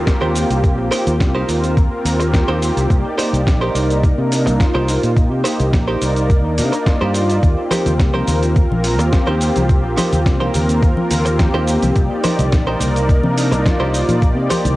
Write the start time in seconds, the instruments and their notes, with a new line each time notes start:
Already playing: analog synth pad A#3 C4 F4 G4, downlifter
0.07 muted clean electric guitar stroke, kick, snare, closed hi-hat, cabasa
0.21 fingered electric bass D#2, clean electric guitar D#4 G4 A#4 C5
0.35 open hi-hat, cabasa
0.50 fingered electric bass C2, closed hi-hat, cabasa
0.63 analog synth pad A#3 C4 F4 G4, kick, closed hi-hat, cabasa
0.78 fingered electric bass A#1
0.91 clean electric guitar D#4 G4 A#4 C5, open hi-hat, cabasa
1.07 fingered electric bass D#2, closed hi-hat, cabasa
1.20 fingered electric bass C2, kick, snare, closed hi-hat, cabasa
1.35 analog synth pad A#3 C4 F4 A#4, clean electric guitar D#4 G4 A#4 C5
1.49 fingered electric bass D#2, open hi-hat, cabasa
1.64 closed hi-hat, cabasa
1.77 kick, closed hi-hat, cabasa
1.92 analog synth pad A#3 C4 F4 A#4
2.05 fingered electric bass D#2, open hi-hat, cabasa
2.19 analog synth pad A#3 C4 F4 G4, muted clean electric guitar stroke, closed hi-hat, cabasa
2.33 muted clean electric guitar stroke, kick, snare, closed hi-hat, cabasa
2.48 fingered electric bass D#2, clean electric guitar D#4 G4 A#4 C5
2.62 open hi-hat, cabasa
2.77 fingered electric bass C2, closed hi-hat, cabasa
2.89 fingered electric bass C2, analog synth pad A#3 D#4 G4 D5, kick, closed hi-hat, cabasa
3.18 clean electric guitar D#4 G4 A#4 C5, open hi-hat, cabasa
3.33 fingered electric bass C2, closed hi-hat, cabasa
3.47 fingered electric bass A#1, kick, snare, closed hi-hat, cabasa
3.61 analog synth pad A#3 D#4 A#4 D5, clean electric guitar D#4 G4 A#4 C5
3.75 fingered electric bass C2, open hi-hat, cabasa
3.90 closed hi-hat, cabasa
4.04 kick, closed hi-hat, cabasa
4.18 fingered electric bass C3, analog synth pad A#3 D4 D#4 A#4
4.32 open hi-hat, cabasa
4.45 fingered electric bass C2, analog synth pad A#3 D#4 F4, muted clean electric guitar stroke, closed hi-hat, cabasa
4.59 muted clean electric guitar stroke, kick, snare, closed hi-hat, cabasa
4.75 fingered electric bass C2, clean electric guitar D#4 G4 A#4 C5
4.89 open hi-hat, cabasa
5.03 fingered electric bass A#2, closed hi-hat, cabasa
5.15 analog synth pad A#3 D#4 G4, kick, closed hi-hat, cabasa
5.32 fingered electric bass C3
5.44 clean electric guitar D#4 G4 A#4 C5, open hi-hat, cabasa
5.60 fingered electric bass C2, closed hi-hat, cabasa
5.73 fingered electric bass A#1, kick, snare, closed hi-hat, cabasa
5.88 analog synth pad A#3 D#4 A#4 D5, clean electric guitar D#4 G4 A#4 C5
6.02 fingered electric bass C2, open hi-hat, cabasa
6.16 closed hi-hat, cabasa
6.30 kick, closed hi-hat, cabasa
6.44 fingered electric bass D#2, analog synth pad A#3 D4 D#4 A#4
6.58 fingered electric bass C3, open hi-hat, cabasa
6.72 analog synth pad A#3 D#4 F4 D5, muted clean electric guitar stroke, closed hi-hat, cabasa
6.86 muted clean electric guitar stroke, kick, snare, closed hi-hat, cabasa
7.01 fingered electric bass G2, clean electric guitar D#4 G4 A#4 C5
7.14 open hi-hat, cabasa
7.29 closed hi-hat, cabasa
7.42 fingered electric bass D#2, analog synth pad A#3 C4 F4 G4, kick, closed hi-hat, cabasa
7.71 clean electric guitar D#4 G4 A#4 C5, open hi-hat, high conga, cabasa
7.86 fingered electric bass D#2, closed hi-hat, low conga, cabasa
7.99 fingered electric bass C2, kick, snare, closed hi-hat, cabasa
8.14 analog synth pad A#3 C4 F4 A#4, clean electric guitar D#4 G4 A#4 C5, high conga
8.28 fingered electric bass D#2, open hi-hat, low conga, cabasa
8.43 closed hi-hat, cabasa
8.56 kick, closed hi-hat, cabasa
8.71 fingered electric bass A#1, analog synth pad A#3 C4 F4 A#4, high conga
8.84 open hi-hat, cabasa
8.98 fingered electric bass D#2, analog synth pad A#3 C4 F4 G4, muted clean electric guitar stroke, closed hi-hat, cabasa
9.12 muted clean electric guitar stroke, kick, snare, closed hi-hat, high conga, cabasa
9.27 fingered electric bass D#2, clean electric guitar D#4 G4 A#4 C5
9.41 open hi-hat, cabasa
9.56 fingered electric bass C2, closed hi-hat, high conga, cabasa
9.68 analog synth pad A#3 C4 F4 G4, kick, closed hi-hat, cabasa
9.84 fingered electric bass A#1
9.97 clean electric guitar D#4 G4 A#4 C5, open hi-hat, high conga, cabasa
10.13 fingered electric bass D#2, closed hi-hat, low conga, cabasa
10.26 fingered electric bass C2, kick, snare, closed hi-hat, cabasa
10.40 analog synth pad A#3 C4 F4 A#4, clean electric guitar D#4 G4 A#4 C5, high conga
10.54 fingered electric bass D#2, open hi-hat, low conga, cabasa
10.69 closed hi-hat, cabasa
10.83 kick, closed hi-hat, cabasa
10.97 analog synth pad A#3 C4 F4 A#4, high conga
11.11 fingered electric bass D#2, open hi-hat, low conga, cabasa
11.25 analog synth pad A#3 C4 F4 G4, muted clean electric guitar stroke, closed hi-hat, cabasa
11.39 muted clean electric guitar stroke, kick, snare, closed hi-hat, high conga, cabasa
11.54 fingered electric bass D#2, clean electric guitar D#4 G4 A#4 C5
11.67 open hi-hat, cabasa
11.82 fingered electric bass C2, closed hi-hat, high conga, cabasa
11.95 analog synth pad A#3 D#4 G4 D5, kick, closed hi-hat, cabasa
12.24 clean electric guitar D#4 G4 A#4 C5, open hi-hat, high conga, cabasa
12.39 fingered electric bass C2, closed hi-hat, low conga, cabasa
12.52 fingered electric bass A#1, kick, snare, closed hi-hat, cabasa
12.67 analog synth pad A#3 D#4 A#4 D5, clean electric guitar D#4 G4 A#4 C5, high conga
12.80 fingered electric bass C2, open hi-hat, low conga, cabasa
12.96 closed hi-hat, cabasa
13.09 kick, closed hi-hat, cabasa
13.23 fingered electric bass C3, analog synth pad A#3 D4 D#4 A#4, high conga
13.38 open hi-hat, cabasa
13.51 fingered electric bass C2, analog synth pad A#3 D#4 F4 D5, muted clean electric guitar stroke, closed hi-hat, cabasa
13.65 muted clean electric guitar stroke, kick, snare, closed hi-hat, high conga, cabasa
13.80 fingered electric bass C2, clean electric guitar D#4 G4 A#4 C5
13.94 open hi-hat, cabasa
14.09 fingered electric bass A#2, closed hi-hat, high conga, cabasa
14.21 analog synth pad A#3 D#4 G4 D5, kick, closed hi-hat, cabasa
14.37 fingered electric bass C3
14.50 clean electric guitar D#4 G4 A#4 C5, open hi-hat, high conga, cabasa
14.65 fingered electric bass C2, closed hi-hat, low conga, cabasa